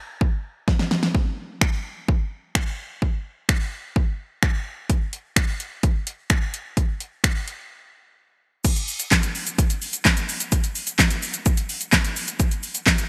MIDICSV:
0, 0, Header, 1, 2, 480
1, 0, Start_track
1, 0, Tempo, 468750
1, 1174, Time_signature, 4, 2, 24, 8
1, 13402, End_track
2, 0, Start_track
2, 0, Title_t, "Drums"
2, 216, Note_on_c, 9, 36, 109
2, 318, Note_off_c, 9, 36, 0
2, 693, Note_on_c, 9, 36, 105
2, 695, Note_on_c, 9, 38, 55
2, 796, Note_off_c, 9, 36, 0
2, 797, Note_off_c, 9, 38, 0
2, 813, Note_on_c, 9, 38, 62
2, 916, Note_off_c, 9, 38, 0
2, 933, Note_on_c, 9, 38, 89
2, 1035, Note_off_c, 9, 38, 0
2, 1052, Note_on_c, 9, 38, 92
2, 1155, Note_off_c, 9, 38, 0
2, 1174, Note_on_c, 9, 36, 88
2, 1276, Note_off_c, 9, 36, 0
2, 1652, Note_on_c, 9, 36, 107
2, 1654, Note_on_c, 9, 26, 108
2, 1755, Note_off_c, 9, 36, 0
2, 1756, Note_off_c, 9, 26, 0
2, 2135, Note_on_c, 9, 36, 114
2, 2237, Note_off_c, 9, 36, 0
2, 2612, Note_on_c, 9, 36, 106
2, 2613, Note_on_c, 9, 26, 114
2, 2715, Note_off_c, 9, 36, 0
2, 2716, Note_off_c, 9, 26, 0
2, 3093, Note_on_c, 9, 36, 92
2, 3195, Note_off_c, 9, 36, 0
2, 3572, Note_on_c, 9, 36, 108
2, 3574, Note_on_c, 9, 26, 108
2, 3675, Note_off_c, 9, 36, 0
2, 3676, Note_off_c, 9, 26, 0
2, 4055, Note_on_c, 9, 36, 114
2, 4158, Note_off_c, 9, 36, 0
2, 4532, Note_on_c, 9, 26, 113
2, 4532, Note_on_c, 9, 36, 109
2, 4635, Note_off_c, 9, 26, 0
2, 4635, Note_off_c, 9, 36, 0
2, 5013, Note_on_c, 9, 36, 96
2, 5013, Note_on_c, 9, 42, 66
2, 5116, Note_off_c, 9, 36, 0
2, 5116, Note_off_c, 9, 42, 0
2, 5252, Note_on_c, 9, 42, 48
2, 5355, Note_off_c, 9, 42, 0
2, 5492, Note_on_c, 9, 36, 108
2, 5494, Note_on_c, 9, 26, 111
2, 5495, Note_on_c, 9, 42, 73
2, 5594, Note_off_c, 9, 36, 0
2, 5596, Note_off_c, 9, 26, 0
2, 5598, Note_off_c, 9, 42, 0
2, 5735, Note_on_c, 9, 42, 52
2, 5837, Note_off_c, 9, 42, 0
2, 5973, Note_on_c, 9, 42, 73
2, 5974, Note_on_c, 9, 36, 117
2, 6075, Note_off_c, 9, 42, 0
2, 6077, Note_off_c, 9, 36, 0
2, 6214, Note_on_c, 9, 42, 62
2, 6316, Note_off_c, 9, 42, 0
2, 6449, Note_on_c, 9, 42, 77
2, 6452, Note_on_c, 9, 26, 114
2, 6452, Note_on_c, 9, 36, 108
2, 6551, Note_off_c, 9, 42, 0
2, 6554, Note_off_c, 9, 36, 0
2, 6555, Note_off_c, 9, 26, 0
2, 6695, Note_on_c, 9, 42, 59
2, 6797, Note_off_c, 9, 42, 0
2, 6932, Note_on_c, 9, 42, 69
2, 6933, Note_on_c, 9, 36, 92
2, 7035, Note_off_c, 9, 36, 0
2, 7035, Note_off_c, 9, 42, 0
2, 7173, Note_on_c, 9, 42, 47
2, 7275, Note_off_c, 9, 42, 0
2, 7412, Note_on_c, 9, 36, 104
2, 7415, Note_on_c, 9, 26, 110
2, 7417, Note_on_c, 9, 42, 75
2, 7514, Note_off_c, 9, 36, 0
2, 7517, Note_off_c, 9, 26, 0
2, 7519, Note_off_c, 9, 42, 0
2, 7655, Note_on_c, 9, 42, 49
2, 7758, Note_off_c, 9, 42, 0
2, 8853, Note_on_c, 9, 36, 99
2, 8853, Note_on_c, 9, 42, 74
2, 8853, Note_on_c, 9, 49, 101
2, 8853, Note_on_c, 9, 82, 72
2, 8955, Note_off_c, 9, 42, 0
2, 8955, Note_off_c, 9, 82, 0
2, 8956, Note_off_c, 9, 36, 0
2, 8956, Note_off_c, 9, 49, 0
2, 8974, Note_on_c, 9, 42, 48
2, 8974, Note_on_c, 9, 82, 48
2, 9077, Note_off_c, 9, 42, 0
2, 9077, Note_off_c, 9, 82, 0
2, 9093, Note_on_c, 9, 46, 71
2, 9093, Note_on_c, 9, 82, 50
2, 9195, Note_off_c, 9, 46, 0
2, 9195, Note_off_c, 9, 82, 0
2, 9212, Note_on_c, 9, 42, 61
2, 9212, Note_on_c, 9, 82, 86
2, 9314, Note_off_c, 9, 42, 0
2, 9314, Note_off_c, 9, 82, 0
2, 9332, Note_on_c, 9, 36, 113
2, 9334, Note_on_c, 9, 39, 119
2, 9336, Note_on_c, 9, 42, 80
2, 9336, Note_on_c, 9, 82, 78
2, 9339, Note_on_c, 9, 38, 94
2, 9435, Note_off_c, 9, 36, 0
2, 9437, Note_off_c, 9, 39, 0
2, 9438, Note_off_c, 9, 42, 0
2, 9438, Note_off_c, 9, 82, 0
2, 9442, Note_off_c, 9, 38, 0
2, 9453, Note_on_c, 9, 42, 60
2, 9453, Note_on_c, 9, 82, 64
2, 9555, Note_off_c, 9, 42, 0
2, 9555, Note_off_c, 9, 82, 0
2, 9575, Note_on_c, 9, 46, 78
2, 9575, Note_on_c, 9, 82, 53
2, 9677, Note_off_c, 9, 46, 0
2, 9677, Note_off_c, 9, 82, 0
2, 9693, Note_on_c, 9, 42, 53
2, 9693, Note_on_c, 9, 82, 78
2, 9796, Note_off_c, 9, 42, 0
2, 9796, Note_off_c, 9, 82, 0
2, 9815, Note_on_c, 9, 36, 118
2, 9816, Note_on_c, 9, 42, 77
2, 9816, Note_on_c, 9, 82, 83
2, 9917, Note_off_c, 9, 36, 0
2, 9918, Note_off_c, 9, 42, 0
2, 9918, Note_off_c, 9, 82, 0
2, 9933, Note_on_c, 9, 42, 60
2, 9933, Note_on_c, 9, 82, 57
2, 10035, Note_off_c, 9, 42, 0
2, 10035, Note_off_c, 9, 82, 0
2, 10053, Note_on_c, 9, 46, 88
2, 10053, Note_on_c, 9, 82, 64
2, 10155, Note_off_c, 9, 46, 0
2, 10155, Note_off_c, 9, 82, 0
2, 10170, Note_on_c, 9, 42, 53
2, 10170, Note_on_c, 9, 82, 72
2, 10272, Note_off_c, 9, 42, 0
2, 10272, Note_off_c, 9, 82, 0
2, 10291, Note_on_c, 9, 42, 85
2, 10291, Note_on_c, 9, 82, 83
2, 10292, Note_on_c, 9, 36, 114
2, 10294, Note_on_c, 9, 39, 126
2, 10299, Note_on_c, 9, 38, 95
2, 10393, Note_off_c, 9, 42, 0
2, 10393, Note_off_c, 9, 82, 0
2, 10395, Note_off_c, 9, 36, 0
2, 10396, Note_off_c, 9, 39, 0
2, 10401, Note_off_c, 9, 38, 0
2, 10413, Note_on_c, 9, 42, 60
2, 10413, Note_on_c, 9, 82, 61
2, 10516, Note_off_c, 9, 42, 0
2, 10516, Note_off_c, 9, 82, 0
2, 10536, Note_on_c, 9, 46, 92
2, 10536, Note_on_c, 9, 82, 63
2, 10638, Note_off_c, 9, 46, 0
2, 10638, Note_off_c, 9, 82, 0
2, 10653, Note_on_c, 9, 42, 61
2, 10653, Note_on_c, 9, 82, 85
2, 10755, Note_off_c, 9, 42, 0
2, 10755, Note_off_c, 9, 82, 0
2, 10773, Note_on_c, 9, 36, 96
2, 10773, Note_on_c, 9, 42, 78
2, 10773, Note_on_c, 9, 82, 77
2, 10875, Note_off_c, 9, 42, 0
2, 10875, Note_off_c, 9, 82, 0
2, 10876, Note_off_c, 9, 36, 0
2, 10892, Note_on_c, 9, 42, 50
2, 10892, Note_on_c, 9, 82, 48
2, 10995, Note_off_c, 9, 42, 0
2, 10995, Note_off_c, 9, 82, 0
2, 11011, Note_on_c, 9, 46, 71
2, 11011, Note_on_c, 9, 82, 53
2, 11114, Note_off_c, 9, 46, 0
2, 11114, Note_off_c, 9, 82, 0
2, 11130, Note_on_c, 9, 42, 61
2, 11130, Note_on_c, 9, 82, 88
2, 11232, Note_off_c, 9, 42, 0
2, 11232, Note_off_c, 9, 82, 0
2, 11252, Note_on_c, 9, 36, 116
2, 11254, Note_on_c, 9, 39, 117
2, 11256, Note_on_c, 9, 42, 78
2, 11256, Note_on_c, 9, 82, 82
2, 11259, Note_on_c, 9, 38, 96
2, 11354, Note_off_c, 9, 36, 0
2, 11357, Note_off_c, 9, 39, 0
2, 11358, Note_off_c, 9, 42, 0
2, 11358, Note_off_c, 9, 82, 0
2, 11362, Note_off_c, 9, 38, 0
2, 11372, Note_on_c, 9, 42, 64
2, 11372, Note_on_c, 9, 82, 61
2, 11474, Note_off_c, 9, 42, 0
2, 11474, Note_off_c, 9, 82, 0
2, 11494, Note_on_c, 9, 46, 73
2, 11494, Note_on_c, 9, 82, 55
2, 11596, Note_off_c, 9, 46, 0
2, 11596, Note_off_c, 9, 82, 0
2, 11610, Note_on_c, 9, 42, 55
2, 11610, Note_on_c, 9, 82, 77
2, 11713, Note_off_c, 9, 42, 0
2, 11713, Note_off_c, 9, 82, 0
2, 11732, Note_on_c, 9, 42, 76
2, 11732, Note_on_c, 9, 82, 80
2, 11734, Note_on_c, 9, 36, 118
2, 11835, Note_off_c, 9, 42, 0
2, 11835, Note_off_c, 9, 82, 0
2, 11837, Note_off_c, 9, 36, 0
2, 11852, Note_on_c, 9, 42, 60
2, 11852, Note_on_c, 9, 82, 58
2, 11954, Note_off_c, 9, 42, 0
2, 11954, Note_off_c, 9, 82, 0
2, 11973, Note_on_c, 9, 46, 90
2, 11973, Note_on_c, 9, 82, 61
2, 12075, Note_off_c, 9, 46, 0
2, 12075, Note_off_c, 9, 82, 0
2, 12091, Note_on_c, 9, 42, 54
2, 12091, Note_on_c, 9, 82, 74
2, 12193, Note_off_c, 9, 42, 0
2, 12193, Note_off_c, 9, 82, 0
2, 12209, Note_on_c, 9, 42, 82
2, 12209, Note_on_c, 9, 82, 85
2, 12212, Note_on_c, 9, 39, 127
2, 12213, Note_on_c, 9, 36, 117
2, 12217, Note_on_c, 9, 38, 97
2, 12312, Note_off_c, 9, 42, 0
2, 12312, Note_off_c, 9, 82, 0
2, 12315, Note_off_c, 9, 36, 0
2, 12315, Note_off_c, 9, 39, 0
2, 12320, Note_off_c, 9, 38, 0
2, 12334, Note_on_c, 9, 42, 60
2, 12334, Note_on_c, 9, 82, 60
2, 12436, Note_off_c, 9, 42, 0
2, 12436, Note_off_c, 9, 82, 0
2, 12455, Note_on_c, 9, 46, 90
2, 12455, Note_on_c, 9, 82, 65
2, 12558, Note_off_c, 9, 46, 0
2, 12558, Note_off_c, 9, 82, 0
2, 12574, Note_on_c, 9, 42, 61
2, 12574, Note_on_c, 9, 82, 85
2, 12676, Note_off_c, 9, 42, 0
2, 12676, Note_off_c, 9, 82, 0
2, 12694, Note_on_c, 9, 36, 103
2, 12694, Note_on_c, 9, 42, 75
2, 12694, Note_on_c, 9, 82, 77
2, 12796, Note_off_c, 9, 36, 0
2, 12796, Note_off_c, 9, 42, 0
2, 12796, Note_off_c, 9, 82, 0
2, 12814, Note_on_c, 9, 42, 49
2, 12814, Note_on_c, 9, 82, 49
2, 12917, Note_off_c, 9, 42, 0
2, 12917, Note_off_c, 9, 82, 0
2, 12934, Note_on_c, 9, 46, 69
2, 12934, Note_on_c, 9, 82, 50
2, 13036, Note_off_c, 9, 46, 0
2, 13036, Note_off_c, 9, 82, 0
2, 13053, Note_on_c, 9, 42, 60
2, 13053, Note_on_c, 9, 82, 84
2, 13155, Note_off_c, 9, 42, 0
2, 13155, Note_off_c, 9, 82, 0
2, 13173, Note_on_c, 9, 36, 116
2, 13176, Note_on_c, 9, 39, 118
2, 13178, Note_on_c, 9, 42, 80
2, 13178, Note_on_c, 9, 82, 77
2, 13181, Note_on_c, 9, 38, 94
2, 13276, Note_off_c, 9, 36, 0
2, 13279, Note_off_c, 9, 39, 0
2, 13280, Note_off_c, 9, 42, 0
2, 13280, Note_off_c, 9, 82, 0
2, 13284, Note_off_c, 9, 38, 0
2, 13295, Note_on_c, 9, 42, 62
2, 13295, Note_on_c, 9, 82, 61
2, 13397, Note_off_c, 9, 42, 0
2, 13397, Note_off_c, 9, 82, 0
2, 13402, End_track
0, 0, End_of_file